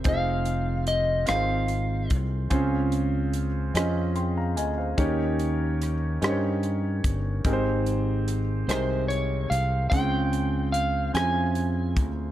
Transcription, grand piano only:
<<
  \new Staff \with { instrumentName = "Grand piano" } { \time 6/8 \key des \lydian \tempo 4. = 49 << { r2. | r2 <g'' c'''>16 <f'' bes''>16 <ees'' aes''>16 <c'' f''>16~ | <c'' f''>16 r2 r8. | r2. |
r2. | } \\ { <c' ees' f' aes' c''>4 r8 <c' ees' f' aes' bes' c''>4 r8 | <c' des' f' aes' c''>4 r8 <c' des' f' aes' ees''>4 r8 | <des' ees' g' bes' des''>4 r8 <des' ees' g' bes' c'' des''>4 r8 | <c' ees' g' aes' bes' c''>4 r8 <c ees' g' aes' bes'>4 r8 |
<c' des' ees' f' aes' c''>4 r8 <c' des' fes' f' aes' c''>4 r8 | } >> }
  \new Staff \with { instrumentName = "Grand piano" } { \clef bass \time 6/8 \key des \lydian r2. | des4. r4. | ees4. r4. | aes,4. r4. |
des4. r4. | }
>>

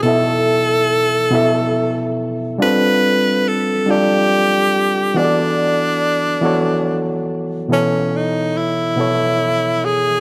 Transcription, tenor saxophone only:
\new Staff \with { instrumentName = "Tenor saxophone" } { \time 6/8 \key e \major \tempo 4. = 47 a'2~ a'8 r8 | b'4 a'8 g'4. | d'2~ d'8 r8 | cis'8 dis'8 e'4. gis'8 | }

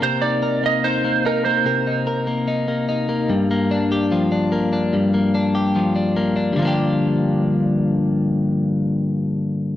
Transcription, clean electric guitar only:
\new Staff \with { instrumentName = "Clean electric guitar" } { \time 4/4 \key g \minor \tempo 4 = 147 <c bes'>8 ees'8 bes'8 bes8 ees'8 bes8 ees'8 bes8 | <c bes'>8 ees'8 bes'8 bes8 ees'8 bes8 ees'8 bes8 | g,8 bes8 d'8 g'8 f8 d'8 bes8 d'8 | g,8 bes8 d'8 g'8 f8 d'8 bes8 d'8 |
<g, d f bes d' g'>1~ | <g, d f bes d' g'>1 | }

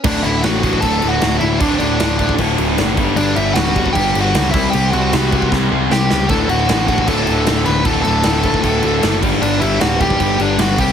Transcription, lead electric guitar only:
\new Staff \with { instrumentName = "Lead electric guitar" } { \time 4/4 \key d \major \tempo 4 = 154 <d' d''>8 <e' e''>8 <fis' fis''>4 <a' a''>8. <fis' fis''>8. <e' e''>8 | <d' d''>8 <d' d''>4. r2 | <d' d''>8 <e' e''>8 <fis' fis''>4 <g' g''>8. <fis' fis''>8. <e' e''>8 | <g' g''>8 <fis' fis''>4. r4 <g' g''>4 |
<a' a''>8 <fis' fis''>4 <fis' fis''>8 <a' a''>4. <b' b''>8 | <a' a''>8 <a' a''>2. r8 | <d' d''>8 <e' e''>8 <fis' fis''>8 <g' g''>4 <d' d''>8 <fis' fis''>8 <g' g''>8 | }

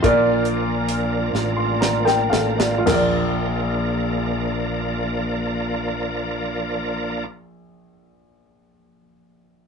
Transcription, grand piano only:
<<
  \new Staff \with { instrumentName = "Grand piano" } { \time 6/8 \key bes \major \tempo 4. = 35 << { r4. r16 c'''16 <d'' bes''>16 <bes' g''>16 <a' f''>16 <f' d''>16~ | <f' d''>16 r2 r8. | r2. | } \\ { <f' bes' d''>4 r2 | <f' bes' d''>2.~ | <f' bes' d''>2. | } >> }
  \new Staff \with { instrumentName = "Grand piano" } { \clef bass \time 6/8 \key bes \major bes,4. r4. | bes,,2.~ | bes,,2. | }
>>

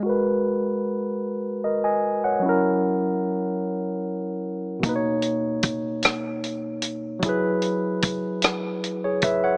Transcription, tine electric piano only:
\new Staff \with { instrumentName = "Tine electric piano" } { \time 6/8 \key gis \minor \tempo 4. = 50 << { r2 <ais' dis''>16 <dis'' gis''>8 <cis'' fis''>16~ | <cis'' fis''>16 r2 r8. | r2. | r2 r16 <gis' cis''>16 <b' e''>16 <cis'' fis''>16 | } \\ { <gis fis' ais' b'>2. | <fis cis' e' ais'>2. | <b, ais dis' b' cis''>2. | <fis e' gis' b'>2. | } >> }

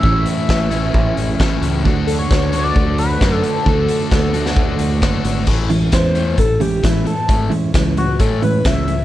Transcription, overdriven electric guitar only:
\new Staff \with { instrumentName = "Overdriven electric guitar" } { \clef bass \time 4/4 \key a \major \tempo 4 = 132 <a, e a cis' e' a'>4. <a, e a cis' e' a'>4. <a, e a cis' e' a'>4 | <d a d' fis' a'>4. <d a d' fis' a'>4. <d a d' fis' a'>4 | <d a d' fis' a'>4. <d a d' fis' a'>4. <d a d' fis' a'>4 | <a, e a>8 <a, e>8 <a, e>8 <a, e a>8 <a, e>8 <a, e>8 <a, e>8 <a, e>8 |
<a, e a>8 <a, e>8 <a, e>8 <a, e>8 <a, e a>8 <a, e>8 <a, e>8 <a, e>8 | }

